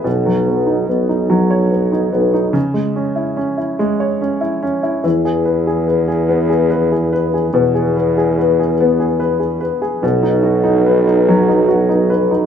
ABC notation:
X:1
M:6/8
L:1/16
Q:3/8=48
K:E
V:1 name="Grand piano"
B,, F, B, D B, D F, c B, D B, D | C, G, C E C E G, c C E C E | E, G B G B G B, G B G B G | B,, G B G B G B, G B G B G |
B,, D F D B D F, D F D B D |]
V:2 name="Tuba" clef=bass
B,,,4 B,,,6 B,,,2 | z12 | E,,12 | E,,8- E,,2 z2 |
B,,,12 |]